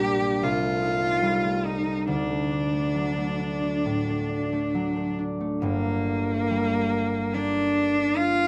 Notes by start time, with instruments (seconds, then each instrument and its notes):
Already playing: harp A#1 G3 A#3, cello G4
0.02 harp D4
0.22 harp A#3
0.42 harp C2, cello F4
0.63 harp A3
0.82 harp D#4
1.02 harp A3
1.22 harp G3
1.43 harp A3
1.64 harp D#4, cello D#4
1.86 harp A3
2.07 harp D2, cello D4
2.30 harp A3
2.51 harp D4
2.73 harp A3
2.95 harp F#3
3.17 harp A3
3.40 harp D4
3.62 harp A3
3.85 harp A2
4.08 harp A3
4.29 harp D4
4.53 harp A3
4.74 harp F#3
4.96 harp A3
5.19 harp D4
5.40 harp A3
5.62 harp G1 G2, cello A#3
6.51 harp G3
7.34 harp A#3 D4, cello D4
8.17 cello F4